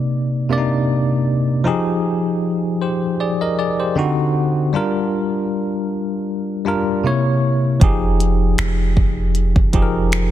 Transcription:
Already playing: C3 A#3 D#4 D5
0.49 C3 A#3 D4 D5
0.58 D#4
1.64 F3 D#4 G4 G#4
2.81 G4 C5
3.20 G#4 D5
3.41 A#4 D#5
3.59 G#4 D5
3.80 G4 C5
3.95 D3 C4 D#4 F#4
4.73 G3 D4 F4 A#4
6.65 G3 D4 F4 A#4
7.04 C3 A#3 E4 C#5
7.80 F1 F3 D#4 G4 G#4, kick, closed hi-hat
8.20 closed hi-hat
8.58 F1, finger snap, closed hi-hat
8.97 F1, kick
9.35 closed hi-hat
9.56 F1, kick
9.73 F1 F3 D#4 G4 G#4, kick, closed hi-hat
9.82 A#4
10.12 finger snap, closed hi-hat

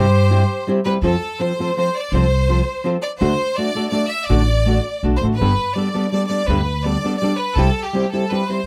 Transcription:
Already playing: G2 G4 C5
0.30 G3 C4 E4 G4
0.67 G3 C4 E4 G4
0.84 G3 C4 E4 G4 B4
1.02 F2 F3 C4 F4 A4
1.39 F3 C4 F4 A4 C5
1.59 F3 C4 F4 A4
1.76 F3 C4 F4 A4 C5
1.96 D5
2.12 C2 F3 C4 F4 A4 C5
2.49 F3 C4 F4 A4
2.84 F3 C4 F4 A4
3.02 D5
3.19 D2 D3 A3 D4 F#4 A4 C5
3.55 A3 D4 F#4 A4 D5
3.75 A3 D4 F#4 A4
3.89 A3 D4 D5
3.93 F#4 A4
4.08 E5
4.27 A1 D3 A3 D4 F#4 D5
4.31 A4
4.66 A3 D4 F#4 A4
5.03 B1 A3 D4 F#4 A4
5.17 C5
5.22 A1 A3 D4 F#4 A4
5.35 B4
5.41 G1 G2 D3 G3 B3 D4 A4
5.73 G3 B3 D4 D5
5.78 A4
5.94 G3 B3 D4 A4
6.11 G3 B3 D4 A4 D5
6.27 G3 B3 D5
6.31 D4 A4
6.47 D2 G2 D3 G3 B3 D4 A4 B4
6.83 G3 B3 D4 A4 D5
7.04 G3 B3 D4 A4
7.18 D5
7.22 G3 B3 D4 A4
7.38 B4
7.56 C2 C3 G3 C4 E4 G4 A4
7.84 G4
7.93 G3 C4 E4 G4
8.11 G3 C4 E4 G4 A4
8.29 G3 C4 E4 G4 B4
8.48 G3 C4 E4 G4 C5

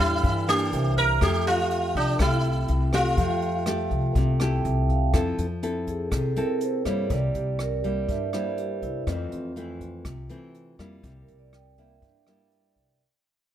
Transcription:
Already playing: A2 G3 D4 E4 A4 D5 G5
0.00 E2 E4
0.23 G2 E3, kick, closed hi-hat
0.47 E3 A#3 D4 G4, cross-stick, closed hi-hat
0.71 C2 D4 A#4 C5 E5, closed hi-hat
0.97 A#4, kick, closed hi-hat
1.21 F2 F3 A3 G4 A4 E5 G5, kick, cross-stick, closed hi-hat
1.47 F4, closed hi-hat
1.71 closed hi-hat
1.95 C2 D4, kick, closed hi-hat
2.19 C2 C3 A3 E4 G4, kick, cross-stick, closed hi-hat
2.44 closed hi-hat
2.68 C2, closed hi-hat
2.93 A3 F4 G4, kick, cross-stick, closed hi-hat
3.17 F2 F3 A4 E5, kick, closed hi-hat
3.21 G5
3.42 closed hi-hat
3.66 A3 G4, cross-stick, closed hi-hat
3.91 C2, kick, closed hi-hat
4.15 C2 C3, kick, closed hi-hat
4.40 A3 E4 G4 A5, cross-stick, closed hi-hat
4.53 G5
4.65 C2 E5, closed hi-hat
4.89 F5, kick, closed hi-hat
5.13 F2 F3 C4 E4 A4, kick, cross-stick, closed hi-hat
5.38 F2, closed hi-hat
5.63 C4 E4 A4, closed hi-hat
5.87 G#4, kick, closed hi-hat
6.11 C2 C3 A4, kick, cross-stick, closed hi-hat
6.36 C4 E4 A4 A#4, closed hi-hat
6.61 C5, closed hi-hat
6.85 G2 G3 A#3 E4 C#5, kick, cross-stick, closed hi-hat
7.10 C2 C3 D5, kick, closed hi-hat
7.34 C2 G4, closed hi-hat
7.59 A#4, cross-stick, closed hi-hat
7.84 G3 A#3 E4 D5, kick, closed hi-hat
8.09 G2 E5, kick, closed hi-hat
8.33 G3 A#3 E4 C5, cross-stick, closed hi-hat
8.58 G4, closed hi-hat
8.82 C2 E4, kick, closed hi-hat
9.07 F2 E3 A3 C4 F4, kick, cross-stick, closed hi-hat
9.32 F2 C4, closed hi-hat
9.56 E3 A3 C4, closed hi-hat
9.81 kick, closed hi-hat
10.05 C2 C3, kick, cross-stick, closed hi-hat
10.29 E3 A3 C4, closed hi-hat
10.55 closed hi-hat
10.79 F2 G3 A#3 E4, kick, cross-stick, closed hi-hat
11.03 C2 C3, kick, closed hi-hat
11.22 A#4
11.28 closed hi-hat
11.39 D5
11.53 G5, cross-stick, closed hi-hat
11.78 G3 A#3 E4 E5, kick, closed hi-hat
12.02 G2, kick, closed hi-hat
12.27 G3 A#3 E4, cross-stick, closed hi-hat
12.51 closed hi-hat
12.76 C2, kick, closed hi-hat

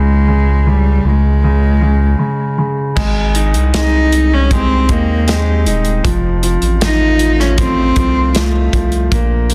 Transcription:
Already playing: C#2 C#3 G#3
0.28 C#3
0.67 C#3 G3
1.05 C#2 C#3
1.09 G#3
1.44 C#3
1.81 C#3
2.19 C#3
2.58 C#3
2.96 G#1 G#3, kick, crash
3.35 D#4, closed hi-hat
3.54 C2, closed hi-hat
3.74 G#3 C4 D#4 G4, snare, closed hi-hat
4.12 D#4, closed hi-hat
4.34 C#4
4.51 G#3 C4 D#4 G4, kick, closed hi-hat
4.89 D#2 A#3 D#4, kick, closed hi-hat
5.27 G#3 C4 D#4 G4, snare, closed hi-hat
5.65 D#1 D#4, closed hi-hat
5.85 closed hi-hat
6.04 F1 F2 F3, kick, closed hi-hat
6.43 F3, closed hi-hat
6.62 A1, closed hi-hat
6.81 F3 A3 D#4 F4, snare, closed hi-hat
7.19 F3, closed hi-hat
7.40 C#4, snare
7.58 F3 A3 C4 D#4 F4, kick, closed hi-hat
7.96 C2 F3, kick, closed hi-hat
8.34 F3 A3 D#4 F4, snare, closed hi-hat
8.73 C2 F3, kick, closed hi-hat
8.92 closed hi-hat
9.11 A#1 A#2 A#3, kick, closed hi-hat
9.50 A#3, closed hi-hat

